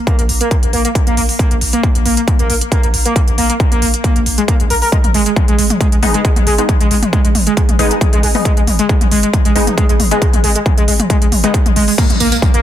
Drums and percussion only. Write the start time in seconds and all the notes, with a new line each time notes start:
0.07 kick, closed hi-hat
0.19 closed hi-hat
0.29 open hi-hat
0.41 closed hi-hat
0.51 kick, closed hi-hat
0.63 closed hi-hat
0.73 open hi-hat
0.85 closed hi-hat
0.95 kick, closed hi-hat
1.07 closed hi-hat
1.17 open hi-hat
1.29 open hi-hat
1.39 kick, closed hi-hat
1.51 closed hi-hat
1.61 open hi-hat
1.73 closed hi-hat
1.83 kick, closed hi-hat
1.95 closed hi-hat
2.06 open hi-hat
2.17 closed hi-hat
2.28 kick, closed hi-hat
2.39 closed hi-hat
2.50 open hi-hat
2.61 closed hi-hat
2.72 kick, closed hi-hat
2.83 closed hi-hat
2.94 open hi-hat
3.06 closed hi-hat
3.16 kick, closed hi-hat
3.28 closed hi-hat
3.38 open hi-hat
3.50 closed hi-hat
3.60 kick, closed hi-hat
3.72 closed hi-hat
3.82 open hi-hat
3.94 closed hi-hat
4.04 kick, closed hi-hat
4.16 closed hi-hat
4.26 open hi-hat
4.38 closed hi-hat
4.48 kick, closed hi-hat
4.60 closed hi-hat
4.70 open hi-hat
4.82 open hi-hat
4.92 kick, closed hi-hat
5.04 closed hi-hat, mid tom
5.14 open hi-hat
5.26 closed hi-hat
5.36 kick, closed hi-hat, mid tom
5.48 closed hi-hat
5.59 open hi-hat
5.70 closed hi-hat, mid tom
5.81 kick, closed hi-hat
5.92 closed hi-hat
6.03 open hi-hat, mid tom
6.14 closed hi-hat
6.25 kick, closed hi-hat
6.36 closed hi-hat, mid tom
6.47 open hi-hat
6.58 closed hi-hat
6.69 kick, closed hi-hat, mid tom
6.81 closed hi-hat
6.91 open hi-hat
7.03 closed hi-hat, mid tom
7.13 kick, closed hi-hat
7.25 closed hi-hat
7.35 open hi-hat, mid tom
7.47 closed hi-hat
7.57 kick, closed hi-hat
7.69 closed hi-hat, mid tom
7.79 open hi-hat
7.91 closed hi-hat
8.01 kick, closed hi-hat, mid tom
8.13 closed hi-hat
8.23 open hi-hat
8.35 open hi-hat, mid tom
8.45 kick, closed hi-hat
8.57 closed hi-hat
8.67 open hi-hat, mid tom
8.79 closed hi-hat
8.89 kick, closed hi-hat
9.01 closed hi-hat, mid tom
9.11 open hi-hat
9.23 closed hi-hat
9.33 kick, closed hi-hat, mid tom
9.45 closed hi-hat
9.56 open hi-hat
9.67 closed hi-hat, mid tom
9.78 kick, closed hi-hat
9.89 closed hi-hat
10.00 open hi-hat, mid tom
10.11 closed hi-hat
10.22 kick, closed hi-hat
10.33 closed hi-hat, mid tom
10.44 open hi-hat
10.56 closed hi-hat
10.66 kick, closed hi-hat, mid tom
10.78 closed hi-hat
10.88 open hi-hat
11.00 closed hi-hat, mid tom
11.10 kick, closed hi-hat
11.22 closed hi-hat
11.32 open hi-hat, mid tom
11.44 closed hi-hat
11.54 kick, closed hi-hat
11.66 closed hi-hat, mid tom
11.76 open hi-hat
11.88 open hi-hat
11.98 kick, closed hi-hat, crash, tambourine
12.10 closed hi-hat, mid tom
12.20 open hi-hat, tambourine
12.32 closed hi-hat, tambourine
12.42 kick, closed hi-hat, mid tom
12.54 closed hi-hat